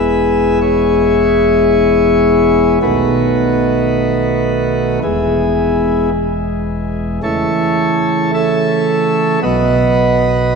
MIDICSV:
0, 0, Header, 1, 2, 480
1, 0, Start_track
1, 0, Tempo, 1100917
1, 1233, Time_signature, 4, 2, 24, 8
1, 4601, End_track
2, 0, Start_track
2, 0, Title_t, "Pipe organ"
2, 0, Program_c, 0, 19
2, 0, Note_on_c, 0, 28, 54
2, 0, Note_on_c, 0, 40, 58
2, 0, Note_on_c, 0, 52, 48
2, 0, Note_on_c, 0, 56, 43
2, 0, Note_on_c, 0, 59, 46
2, 0, Note_on_c, 0, 68, 82
2, 0, Note_on_c, 0, 71, 80
2, 0, Note_on_c, 0, 76, 100
2, 256, Note_off_c, 0, 68, 0
2, 256, Note_off_c, 0, 71, 0
2, 256, Note_off_c, 0, 76, 0
2, 269, Note_on_c, 0, 64, 85
2, 270, Note_on_c, 0, 73, 119
2, 271, Note_on_c, 0, 68, 93
2, 1213, Note_off_c, 0, 64, 0
2, 1213, Note_off_c, 0, 73, 0
2, 1214, Note_off_c, 0, 68, 0
2, 1215, Note_off_c, 0, 28, 0
2, 1215, Note_off_c, 0, 40, 0
2, 1215, Note_off_c, 0, 52, 0
2, 1215, Note_off_c, 0, 56, 0
2, 1215, Note_off_c, 0, 59, 0
2, 1230, Note_on_c, 0, 35, 60
2, 1230, Note_on_c, 0, 51, 52
2, 1230, Note_on_c, 0, 66, 71
2, 1231, Note_on_c, 0, 47, 56
2, 1231, Note_on_c, 0, 57, 53
2, 1231, Note_on_c, 0, 59, 51
2, 1231, Note_on_c, 0, 63, 67
2, 1232, Note_on_c, 0, 71, 92
2, 2177, Note_off_c, 0, 35, 0
2, 2177, Note_off_c, 0, 47, 0
2, 2177, Note_off_c, 0, 51, 0
2, 2177, Note_off_c, 0, 57, 0
2, 2177, Note_off_c, 0, 63, 0
2, 2177, Note_off_c, 0, 66, 0
2, 2178, Note_off_c, 0, 59, 0
2, 2178, Note_off_c, 0, 71, 0
2, 2195, Note_on_c, 0, 28, 62
2, 2195, Note_on_c, 0, 52, 52
2, 2195, Note_on_c, 0, 68, 100
2, 2196, Note_on_c, 0, 40, 63
2, 2196, Note_on_c, 0, 56, 53
2, 2196, Note_on_c, 0, 64, 69
2, 2197, Note_on_c, 0, 59, 72
2, 2657, Note_off_c, 0, 68, 0
2, 2658, Note_off_c, 0, 59, 0
2, 2658, Note_off_c, 0, 64, 0
2, 3136, Note_off_c, 0, 28, 0
2, 3136, Note_off_c, 0, 40, 0
2, 3136, Note_off_c, 0, 52, 0
2, 3136, Note_off_c, 0, 56, 0
2, 3151, Note_on_c, 0, 57, 53
2, 3153, Note_on_c, 0, 49, 65
2, 3154, Note_on_c, 0, 52, 50
2, 3154, Note_on_c, 0, 73, 113
2, 3155, Note_on_c, 0, 64, 86
2, 3156, Note_on_c, 0, 69, 90
2, 3622, Note_off_c, 0, 73, 0
2, 3623, Note_off_c, 0, 64, 0
2, 3623, Note_off_c, 0, 69, 0
2, 3638, Note_on_c, 0, 69, 85
2, 3638, Note_on_c, 0, 76, 120
2, 3639, Note_on_c, 0, 73, 88
2, 4091, Note_off_c, 0, 49, 0
2, 4091, Note_off_c, 0, 57, 0
2, 4092, Note_off_c, 0, 52, 0
2, 4096, Note_off_c, 0, 69, 0
2, 4096, Note_off_c, 0, 73, 0
2, 4096, Note_off_c, 0, 76, 0
2, 4109, Note_on_c, 0, 59, 55
2, 4110, Note_on_c, 0, 54, 57
2, 4111, Note_on_c, 0, 47, 65
2, 4112, Note_on_c, 0, 35, 69
2, 4112, Note_on_c, 0, 66, 101
2, 4112, Note_on_c, 0, 75, 127
2, 4113, Note_on_c, 0, 71, 93
2, 4601, Note_off_c, 0, 35, 0
2, 4601, Note_off_c, 0, 47, 0
2, 4601, Note_off_c, 0, 54, 0
2, 4601, Note_off_c, 0, 59, 0
2, 4601, Note_off_c, 0, 66, 0
2, 4601, Note_off_c, 0, 71, 0
2, 4601, Note_off_c, 0, 75, 0
2, 4601, End_track
0, 0, End_of_file